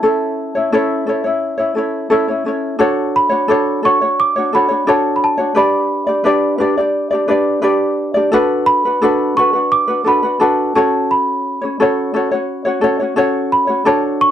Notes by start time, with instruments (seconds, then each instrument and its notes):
Already playing: celesta A5
0.03 ukulele C#4 E4 A4 C#5
0.55 ukulele C#4 E4 C#5
0.72 ukulele C#4 E4 A4 C#5
1.07 ukulele C#4 E4 A4 C#5
1.24 ukulele C#4 E4 C#5
1.58 ukulele C#4 E4 C#5
1.75 ukulele C#4 E4 A4 C#5
2.10 ukulele C#4 E4 A4 C#5
2.28 ukulele C#4 E4 C#5
2.45 ukulele C#4 E4 A4 C#5
2.79 ukulele D4 F#4 A4 C#5
3.16 celesta B5
3.29 ukulele D4 F#4 C#5
3.48 ukulele D4 F#4 A4 C#5
3.83 ukulele D4 F#4 A4 C#5, celesta C#6
4.01 ukulele D4 F#4 C#5
4.20 celesta D6
4.36 ukulele D4 F#4 C#5
4.53 ukulele D4 F#4 A4 C#5, celesta B5
4.68 ukulele D4 F#4 C#5
4.87 ukulele D4 F#4 A4 C#5, celesta A5
5.16 celesta B5
5.24 celesta A5
5.38 ukulele D4 F#4 C#5
5.55 ukulele D4 G4 B4 D5, celesta B5
6.07 ukulele D4 G4 D5
6.24 ukulele D4 G4 B4 D5
6.58 ukulele D4 G4 B4 D5
6.77 ukulele D4 G4 D5
7.11 ukulele D4 G4 D5
7.28 ukulele D4 G4 B4 D5
7.62 ukulele D4 G4 B4 D5
8.14 ukulele D4 G4 D5
8.32 ukulele D4 F#4 A4 B4
8.66 celesta B5
8.85 ukulele D4 F#4 B4
9.02 ukulele D4 F#4 A4 B4
9.37 ukulele D4 F#4 A4 B4, celesta C#6
9.53 ukulele D4 F#4 B4
9.72 celesta D6
9.88 ukulele D4 F#4 B4
10.04 ukulele D4 F#4 A4 B4, celesta B5
10.23 ukulele D4 F#4 B4
10.40 ukulele D4 F#4 A4 B4, celesta A5
10.75 ukulele C#4 F#4 A4 C#5, celesta A5
11.11 celesta B5
11.61 ukulele C#4 C#5
11.80 ukulele C#4 F#4 A4 C#5
12.14 ukulele C#4 F#4 A4 C#5
12.31 ukulele C#4 F#4 C#5
12.65 ukulele C#4 F#4 C#5
12.81 ukulele C#4 F#4 A4 C#5
13.00 ukulele C#4 F#4 C#5
13.16 ukulele C#4 F#4 A4 C#5
13.52 celesta B5
13.67 ukulele C#4 F#4 C#5
13.85 ukulele D4 F#4 A4 C#5, celesta A5
14.21 celesta C#6